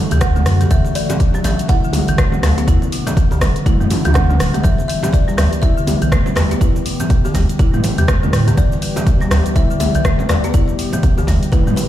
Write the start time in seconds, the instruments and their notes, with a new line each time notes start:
Already playing: analog synth pad C#3 D3 A3 F#4
0.11 sub bass D2, marimba E3, closed hi-hat, djembe tone, cabasa
0.21 kalimba F#5, kick, cross-stick, closed hi-hat, muted conga, low conga, cabasa
0.36 marimba D3, mid tom, high conga, cabasa
0.46 sub bass F#2, marimba F#3, cross-stick, open hi-hat, muted conga, cabasa
0.61 marimba E3, closed hi-hat, djembe tone, cabasa
0.70 sub bass D2, marimba E3, kalimba E5, kick, closed hi-hat, high conga, cabasa
0.84 muted conga, cabasa
0.95 marimba E3, kalimba D5, open hi-hat, cabasa
1.09 marimba E3, closed hi-hat, muted conga, djembe slap, djembe tone, high conga, low conga, cabasa
1.20 kick, closed hi-hat, high conga, cabasa
1.34 marimba F#3, muted conga, djembe tone, cabasa
1.44 sub bass A1, marimba E3, kalimba E5, open hi-hat, djembe slap, djembe tone, low conga, cabasa
1.59 closed hi-hat, cabasa
1.68 marimba E4, kalimba F#5, kick, closed hi-hat, muted conga, high conga, cabasa
1.84 marimba D3, cabasa
1.93 mid tom, open hi-hat, muted conga, high conga, djembe tone, djembe bass, cabasa
2.08 sub bass A1, marimba E3, closed hi-hat, cabasa
2.18 marimba A3, kick, cross-stick, closed hi-hat, muted conga, cabasa
2.32 low conga, cabasa
2.43 sub bass D2, marimba F#3, cross-stick, open hi-hat, muted conga, djembe slap, cabasa
2.58 marimba B3, closed hi-hat, djembe tone, cabasa
2.67 sub bass D2, marimba E4, kick, closed hi-hat, high conga, cabasa
2.82 muted conga, cabasa
2.92 marimba B2, open hi-hat, cabasa
3.06 marimba E3, closed hi-hat, djembe slap, muted conga, high conga, low conga, cabasa
3.17 kick, closed hi-hat, high conga, cabasa
3.31 marimba D3, muted conga, djembe tone, djembe bass, cabasa
3.41 sub bass A1, marimba F#3, kick, cross-stick, open hi-hat, djembe slap, djembe tone, low conga, cabasa
3.56 closed hi-hat, cabasa
3.66 marimba E4, kick, closed hi-hat, mid tom, muted conga, cabasa
3.80 sub bass F#2, marimba E3, mid tom, cabasa
3.90 open hi-hat, high tom, muted conga, low conga, cabasa
4.05 sub bass D2, marimba E3, closed hi-hat, high tom, djembe tone, cabasa
4.14 marimba D3, kalimba F#5, kick, cross-stick, closed hi-hat, mid tom, muted conga, low conga, cabasa
4.29 marimba D3, mid tom, high conga, cabasa
4.39 sub bass D1, marimba F#3, cross-stick, open hi-hat, muted conga, cabasa
4.54 marimba E3, closed hi-hat, mid tom, djembe tone, cabasa
4.63 sub bass E2, marimba E3, analog synth pad E3 G3 B3 G4, kalimba E5, kick, closed hi-hat, high conga, cabasa
4.78 muted conga, cabasa
4.88 marimba E3, kalimba E5, open hi-hat, cabasa
5.03 marimba E3, closed hi-hat, muted conga, djembe slap, high conga, djembe tone, low conga, cabasa
5.13 kalimba D5, kick, closed hi-hat, high conga, cabasa
5.28 marimba G3, muted conga, djembe tone, cabasa
5.37 sub bass D2, marimba E3, cross-stick, open hi-hat, djembe slap, djembe tone, low conga, cabasa
5.53 closed hi-hat, cabasa
5.62 marimba E4, kalimba E5, kick, closed hi-hat, muted conga, high conga, cabasa
5.77 marimba D3, cabasa
5.87 mid tom, open hi-hat, muted conga, djembe tone, high conga, djembe bass, cabasa
6.02 sub bass B1, marimba E3, closed hi-hat, cabasa
6.12 marimba A3, kick, cross-stick, closed hi-hat, muted conga, cabasa
6.26 low conga, cabasa
6.35 sub bass E2, marimba G3, kalimba B4, cross-stick, open hi-hat, muted conga, djembe slap, cabasa
6.51 marimba B3, closed hi-hat, djembe tone, cabasa
6.61 sub bass E2, marimba E4, kick, closed hi-hat, high conga, cabasa
6.76 muted conga, cabasa
6.86 marimba B2, open hi-hat, cabasa
7.00 marimba E3, closed hi-hat, muted conga, high conga, low conga, cabasa
7.10 kick, closed hi-hat, high conga, cabasa
7.25 marimba D3, muted conga, djembe tone, djembe bass, cabasa
7.34 sub bass D2, marimba G3, kick, open hi-hat, djembe slap, djembe tone, low conga, cabasa
7.49 closed hi-hat, cabasa
7.59 marimba E4, kick, closed hi-hat, muted conga, cabasa
7.74 sub bass A2, marimba E3, mid tom, cabasa
7.84 open hi-hat, muted conga, low conga, cabasa
7.98 sub bass E2, marimba E3, closed hi-hat, djembe tone, cabasa
8.08 marimba D3, kick, cross-stick, closed hi-hat, muted conga, low conga, cabasa
8.23 marimba D3, mid tom, high conga, cabasa
8.33 sub bass A2, marimba G3, cross-stick, open hi-hat, muted conga, cabasa
8.47 marimba E3, closed hi-hat, djembe tone, cabasa
8.57 sub bass E2, marimba E3, kalimba D5, kick, closed hi-hat, high conga, cabasa
8.72 muted conga, cabasa
8.82 marimba E3, open hi-hat, cabasa
8.96 marimba E3, closed hi-hat, djembe slap, muted conga, high conga, djembe tone, low conga, cabasa
9.07 kick, closed hi-hat, high conga, cabasa
9.21 marimba G3, muted conga, djembe tone, cabasa
9.31 sub bass D2, marimba E3, cross-stick, open hi-hat, djembe slap, djembe tone, low conga, cabasa
9.46 closed hi-hat, cabasa
9.56 marimba E4, kalimba E5, kick, closed hi-hat, muted conga, high conga, cabasa
9.71 marimba D3, cabasa
9.80 kalimba E5, mid tom, open hi-hat, muted conga, djembe tone, high conga, djembe bass, cabasa
9.95 sub bass B1, marimba E3, closed hi-hat, cabasa
10.05 marimba A3, kick, cross-stick, closed hi-hat, muted conga, cabasa
10.19 low conga, cabasa
10.29 sub bass E2, marimba G3, kalimba D5, cross-stick, open hi-hat, djembe slap, muted conga, cabasa
10.44 marimba B3, closed hi-hat, djembe tone, cabasa
10.54 sub bass E2, marimba E4, kick, closed hi-hat, high conga, cabasa
10.68 muted conga, cabasa
10.79 marimba B2, open hi-hat, cabasa
10.93 marimba E3, closed hi-hat, muted conga, high conga, low conga, cabasa
11.03 kick, closed hi-hat, high conga, cabasa
11.18 marimba D3, muted conga, djembe tone, djembe bass, cabasa
11.27 sub bass D2, marimba G3, kick, open hi-hat, djembe slap, djembe tone, low conga, cabasa
11.43 closed hi-hat, cabasa
11.52 marimba E4, kalimba B4, kick, closed hi-hat, mid tom, muted conga, cabasa
11.67 sub bass A2, marimba E3, mid tom, cabasa
11.76 kalimba B4, open hi-hat, muted conga, low conga, cabasa